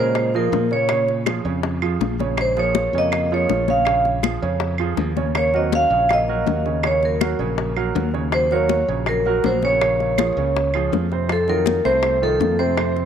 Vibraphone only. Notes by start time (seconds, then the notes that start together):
0.00 C5
0.36 A#4
0.73 C#5
2.41 C5
2.59 C#5
2.98 D#5
3.34 C#5
3.70 F5
5.37 C#5
5.56 D#5
5.75 F5
6.13 D#5
6.87 C#5
7.05 A#4
8.34 C5
8.52 C#5
9.09 A#4
9.46 C5
9.65 C#5
11.32 A4
11.50 A#4
11.85 C5
12.23 A4
12.59 C5